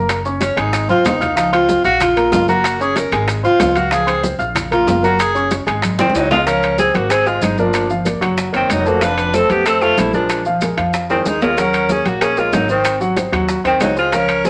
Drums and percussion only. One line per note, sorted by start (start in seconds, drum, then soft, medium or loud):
0.09 high bongo medium
0.09 high timbale loud
0.09 maracas medium
0.25 high bongo soft
0.25 maracas soft
0.41 high bongo medium
0.41 high conga medium
0.41 high timbale medium
0.41 low timbale medium
0.41 maracas medium
0.57 high bongo soft
0.57 high conga soft
0.57 high timbale medium
0.57 maracas soft
0.73 high bongo medium
0.73 high conga soft
0.73 high timbale medium
0.73 maracas medium
0.89 high conga medium
0.89 maracas soft
1.05 high bongo soft
1.05 low bongo medium
1.05 low conga medium
1.05 high timbale medium
1.05 low timbale medium
1.05 maracas medium
1.21 high bongo soft
1.21 low conga medium
1.21 high timbale medium
1.21 maracas soft
1.37 high bongo medium
1.37 high timbale medium
1.37 maracas medium
1.53 high bongo soft
1.53 high conga soft
1.53 high timbale medium
1.53 maracas soft
1.69 high bongo medium
1.69 high conga medium
1.69 low timbale medium
1.69 maracas medium
1.84 high bongo soft
1.84 high conga soft
1.84 maracas soft
2.00 high bongo medium
2.00 high conga soft
2.00 low conga medium
2.00 high timbale loud
2.00 maracas medium
2.17 high conga soft
2.17 high timbale medium
2.17 maracas soft
2.32 high bongo soft
2.32 low bongo medium
2.32 high conga medium
2.32 low timbale medium
2.32 maracas medium
2.48 high bongo soft
2.48 high conga medium
2.48 maracas soft
2.64 high bongo medium
2.64 high timbale loud
2.64 maracas medium
2.80 high bongo soft
2.80 high conga soft
2.80 maracas soft
2.96 high bongo medium
2.96 high conga medium
2.96 high timbale medium
2.96 low timbale medium
2.96 maracas medium
3.12 high bongo soft
3.12 high conga soft
3.12 high timbale medium
3.12 maracas soft
3.28 high bongo medium
3.28 high conga soft
3.28 high timbale medium
3.28 maracas medium
3.44 high conga soft
3.44 maracas soft
3.60 high bongo soft
3.60 low bongo medium
3.60 high conga medium
3.60 high timbale medium
3.60 low timbale medium
3.60 maracas medium
3.75 high bongo soft
3.75 high conga medium
3.75 high timbale medium
3.75 maracas soft
3.91 high bongo medium
3.91 high conga soft
3.91 high timbale medium
3.91 maracas medium
4.07 high bongo soft
4.07 high conga soft
4.07 high timbale medium
4.07 maracas soft
4.24 high bongo medium
4.24 high conga medium
4.24 low timbale medium
4.24 maracas medium
4.40 high bongo soft
4.40 high conga soft
4.40 maracas soft
4.55 high bongo medium
4.55 high conga soft
4.55 low conga medium
4.55 high timbale loud
4.55 maracas medium
4.71 high conga soft
4.71 low conga medium
4.71 high timbale medium
4.71 maracas soft
4.87 high bongo soft
4.87 low bongo medium
4.87 high conga medium
4.87 low timbale medium
4.87 maracas medium
5.03 high bongo soft
5.03 high conga medium
5.03 maracas soft
5.19 high bongo medium
5.19 high timbale loud
5.19 maracas medium
5.35 high bongo soft
5.35 high conga soft
5.35 maracas soft
5.51 high bongo medium
5.51 high conga medium
5.51 high timbale medium
5.51 low timbale medium
5.51 maracas medium
5.67 high bongo soft
5.67 high conga soft
5.67 high timbale medium
5.67 maracas soft
5.82 high bongo medium
5.82 high conga medium
5.82 high timbale medium
5.82 maracas medium
5.99 high bongo medium
5.99 high conga medium
5.99 high timbale medium
5.99 maracas soft
6.10 low bongo medium
6.15 high timbale medium
6.15 maracas medium
6.31 low bongo medium
6.31 low conga medium
6.31 low timbale loud
6.31 maracas soft
6.47 high bongo medium
6.47 high conga soft
6.47 high timbale medium
6.47 maracas medium
6.63 high conga soft
6.63 high timbale medium
6.63 maracas soft
6.78 high bongo medium
6.78 high conga medium
6.78 maracas medium
6.94 high bongo soft
6.94 high conga medium
6.94 high timbale medium
6.94 maracas soft
7.10 high bongo medium
7.10 high timbale loud
7.10 maracas medium
7.26 high bongo soft
7.26 high conga soft
7.26 maracas soft
7.42 high bongo soft
7.42 low bongo medium
7.42 high conga medium
7.42 high timbale medium
7.42 maracas medium
7.58 high bongo soft
7.58 high conga medium
7.58 maracas soft
7.73 high bongo medium
7.73 high timbale loud
7.73 maracas medium
7.89 high conga soft
7.89 maracas soft
8.05 high bongo medium
8.05 high conga medium
8.05 high timbale medium
8.05 maracas medium
8.22 high bongo soft
8.22 high timbale medium
8.22 maracas soft
8.38 high bongo medium
8.38 high conga soft
8.38 maracas medium
8.54 high bongo soft
8.54 high conga soft
8.54 high timbale medium
8.54 maracas soft
8.70 high bongo soft
8.70 low bongo medium
8.70 high conga soft
8.70 high timbale medium
8.70 maracas medium
8.86 high bongo soft
8.86 high conga soft
8.86 maracas soft
9.01 high bongo medium
9.01 high conga soft
9.01 high timbale medium
9.01 maracas medium
9.18 high conga soft
9.18 high timbale medium
9.18 maracas soft
9.34 high bongo soft
9.34 high conga medium
9.34 maracas medium
9.50 high bongo soft
9.50 high conga medium
9.50 high timbale medium
9.50 maracas soft
9.66 high bongo medium
9.66 high conga soft
9.66 high timbale loud
9.66 maracas medium
9.81 high bongo soft
9.81 high conga soft
9.81 maracas soft
9.97 high bongo soft
9.97 low bongo medium
9.97 high conga medium
9.97 high timbale medium
9.97 low timbale medium
9.97 maracas medium
10.13 high bongo soft
10.13 high conga medium
10.13 maracas soft
10.29 high bongo medium
10.29 high conga soft
10.29 high timbale medium
10.29 maracas medium
10.45 high conga soft
10.45 maracas soft
10.61 high bongo medium
10.61 high conga medium
10.61 high timbale medium
10.61 maracas medium
10.78 high bongo soft
10.78 high conga soft
10.78 high timbale medium
10.78 maracas soft
10.93 high bongo medium
10.93 high conga soft
10.93 maracas medium
11.10 high bongo soft
11.10 high conga soft
11.10 high timbale medium
11.10 maracas soft
11.25 high bongo soft
11.25 low bongo medium
11.25 high conga soft
11.25 maracas medium
11.41 high bongo soft
11.41 high conga soft
11.41 low timbale medium
11.41 maracas soft
11.57 high bongo medium
11.57 high conga soft
11.57 high timbale medium
11.57 maracas medium
11.73 high conga soft
11.73 high timbale loud
11.73 maracas soft
11.89 high bongo medium
11.89 high conga medium
11.89 maracas medium
12.05 high bongo soft
12.05 high conga loud
12.05 high timbale medium
12.05 maracas soft
12.21 high bongo medium
12.21 high conga soft
12.21 high timbale medium
12.21 maracas medium
12.37 high bongo soft
12.37 high conga soft
12.37 maracas soft
12.53 high bongo soft
12.53 low bongo medium
12.53 high conga medium
12.53 high timbale medium
12.53 low timbale medium
12.53 maracas medium
12.68 high bongo soft
12.68 maracas soft
12.84 high bongo medium
12.84 high conga soft
12.84 high timbale loud
12.84 maracas medium
13.01 high conga soft
13.01 maracas soft
13.17 high bongo medium
13.17 high conga medium
13.17 high timbale medium
13.17 maracas medium
13.33 high bongo soft
13.33 high conga soft
13.33 high timbale medium
13.33 maracas soft
13.48 high bongo medium
13.48 high conga soft
13.48 maracas medium
13.65 high bongo soft
13.65 high conga soft
13.65 high timbale medium
13.65 maracas soft
13.80 high bongo soft
13.80 low bongo medium
13.80 high timbale medium
13.80 low timbale medium
13.80 maracas medium
13.97 high bongo soft
13.97 high conga soft
13.97 maracas soft
14.12 high bongo medium
14.12 high conga soft
14.12 high timbale medium
14.12 maracas medium
14.29 high conga soft
14.29 high timbale medium
14.29 maracas soft
14.45 high bongo medium
14.45 high conga medium
14.45 maracas medium